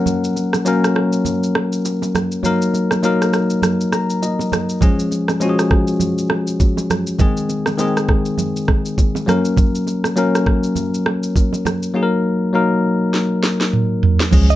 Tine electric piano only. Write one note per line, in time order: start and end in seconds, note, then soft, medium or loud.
0.00 0.50 F#3 medium
0.00 0.50 A#3 medium
0.00 0.51 C#4 medium
0.00 0.51 A#4 medium
0.00 2.47 F#5 medium
0.65 1.62 F#3 medium
0.65 1.62 A#3 medium
0.65 1.63 C#4 medium
0.65 1.63 A#4 loud
2.43 2.93 F#3 medium
2.43 2.94 A#3 medium
2.43 2.94 D#4 medium
2.43 2.95 A#4 medium
3.03 3.99 F#3 medium
3.03 4.00 A#3 medium
3.03 4.00 D#4 medium
3.03 4.01 A#4 medium
3.93 4.21 A#5 medium
4.23 4.78 D#5 medium
4.81 5.31 F3 medium
4.81 5.31 G#3 medium
4.81 5.32 C#4 medium
4.81 5.32 G#4 medium
5.40 6.37 F3 medium
5.40 6.37 G#3 medium
5.40 6.38 C#4 medium
5.40 5.50 F#4 medium
5.49 6.42 G#4 medium
7.19 7.69 D#3 medium
7.19 7.69 G#3 medium
7.19 7.70 C4 medium
7.19 7.70 G#4 medium
7.78 8.74 D#3 medium
7.78 8.75 G#3 medium
7.78 8.75 C4 medium
7.78 8.76 G#4 loud
9.26 10.00 F#3 medium
9.26 10.01 A#3 medium
9.26 10.01 C#4 medium
9.26 10.02 A#4 medium
10.16 11.12 F#3 medium
10.16 11.13 A#3 medium
10.16 11.13 C#4 medium
10.16 11.14 A#4 loud
11.94 12.44 F#3 medium
11.94 12.44 A#3 medium
11.94 12.45 D#4 medium
11.94 12.03 G#4 medium
12.03 12.48 A#4 medium
12.53 13.50 F#3 medium
12.53 13.50 A#3 medium
12.53 13.51 D#4 medium
12.53 13.51 A#4 loud
14.31 14.56 F3 medium
14.31 14.56 G#3 medium
14.31 14.56 C#4 medium
14.31 14.56 G#4 medium